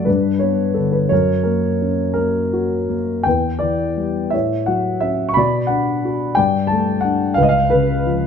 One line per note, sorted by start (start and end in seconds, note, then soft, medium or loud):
0.05 1.08 G2 medium
0.05 1.08 D4 medium
0.05 0.42 B4 medium
0.39 1.10 B3 soft
0.39 0.77 C#5 medium
0.74 1.10 D3 soft
0.74 0.94 A4 medium
0.92 1.11 B4 medium
1.09 3.22 F#2 medium
1.09 1.42 A#4 medium
1.09 1.46 C#5 medium
1.43 2.16 A#3 soft
1.43 2.12 A#4 medium
1.82 3.22 C#4 soft
2.14 2.87 A#3 soft
2.14 2.93 A#4 medium
2.53 3.24 F#4 soft
2.89 3.24 A#3 soft
3.23 4.30 E2 soft
3.23 4.30 B4 medium
3.23 3.62 G5 medium
3.59 4.31 E3 soft
3.59 4.34 D5 medium
3.97 4.32 G3 soft
4.30 5.34 A2 soft
4.30 5.33 C#5 medium
4.30 4.68 E5 medium
4.66 5.35 F#3 soft
4.66 4.99 F#5 medium
5.00 5.36 C#4 soft
5.00 5.30 E5 medium
5.29 5.36 C#6 medium
5.34 6.35 B2 medium
5.34 6.34 D5 medium
5.34 5.70 B5 medium
5.67 6.35 D4 soft
5.67 6.38 F#5 medium
6.05 6.37 F#4 soft
6.35 7.35 G2 soft
6.35 7.34 D5 medium
6.35 6.71 G5 medium
6.67 7.04 A5 medium
6.72 7.36 A3 soft
7.01 7.37 D4 soft
7.01 7.37 F#5 medium
7.34 8.27 C#2 soft
7.34 7.68 B4 medium
7.34 7.43 F5 medium
7.43 7.50 D#5 medium
7.49 7.71 F5 medium
7.70 8.27 C#3 soft
7.70 8.27 B4 medium
8.06 8.27 F3 soft